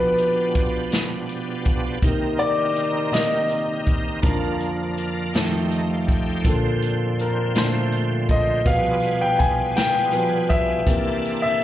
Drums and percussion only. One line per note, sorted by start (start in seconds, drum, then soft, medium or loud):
0.18 closed hi-hat soft
0.55 kick medium
0.55 closed hi-hat soft
0.92 snare medium
0.92 closed hi-hat medium
1.29 closed hi-hat soft
1.65 kick medium
1.65 closed hi-hat soft
2.02 kick loud
2.02 closed hi-hat medium
2.40 closed hi-hat soft
2.76 closed hi-hat medium
3.13 snare loud
3.13 closed hi-hat medium
3.50 closed hi-hat soft
3.86 kick medium
3.86 closed hi-hat soft
4.23 kick loud
4.23 closed hi-hat medium
4.60 closed hi-hat soft
4.98 closed hi-hat medium
5.34 snare loud
5.34 closed hi-hat medium
5.71 closed hi-hat soft
6.08 kick medium
6.08 closed hi-hat soft
6.44 kick loud
6.44 closed hi-hat medium
6.82 closed hi-hat medium
7.19 closed hi-hat soft
7.55 snare loud
7.55 closed hi-hat medium
7.92 closed hi-hat soft
8.29 kick medium
8.29 closed hi-hat soft
8.66 kick loud
8.66 closed hi-hat medium
9.03 closed hi-hat soft
9.40 kick medium
9.40 closed hi-hat medium
9.77 snare loud
9.77 closed hi-hat medium
10.13 closed hi-hat soft
10.50 kick medium
10.50 closed hi-hat soft
10.87 kick loud
10.87 closed hi-hat medium
11.24 closed hi-hat soft